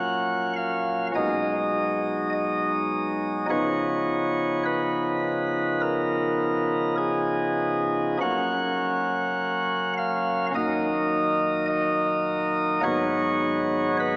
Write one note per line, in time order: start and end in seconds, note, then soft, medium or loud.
0.00 1.12 A#1 medium
0.00 1.12 A#2 medium
0.00 1.12 F#3 soft
0.00 1.12 A#3 soft
0.00 1.12 C#4 soft
0.00 0.53 F#5 loud
0.56 1.07 F5 medium
1.15 3.46 B1 medium
1.15 3.46 B2 medium
1.15 3.46 F#3 soft
1.15 3.46 G#3 soft
1.15 3.46 D#4 soft
1.15 2.30 D#5 loud
2.33 3.46 D#5 loud
3.49 8.18 C#3 medium
3.49 8.18 F3 soft
3.49 8.18 B3 soft
3.49 8.18 D#4 soft
3.49 4.63 C#5 loud
4.65 5.80 B4 medium
5.81 6.95 A#4 loud
6.98 8.17 G#4 medium
8.21 10.51 F#1 medium
8.21 10.51 F#2 medium
8.21 10.51 F#3 medium
8.21 10.51 A#3 medium
8.21 10.51 C#4 medium
8.21 9.93 F#5 loud
9.98 10.47 F5 loud
10.55 12.81 D#1 medium
10.55 12.81 D#2 medium
10.55 12.81 F#3 medium
10.55 12.81 A#3 medium
10.55 12.81 D#4 medium
10.55 11.66 D#5 loud
11.68 12.80 D#5 loud
12.83 14.17 G#1 medium
12.83 14.17 G#2 medium
12.83 14.17 F#3 medium
12.83 14.17 B3 medium
12.83 14.17 D#4 medium
12.83 13.97 C#5 loud
14.00 14.17 B4 loud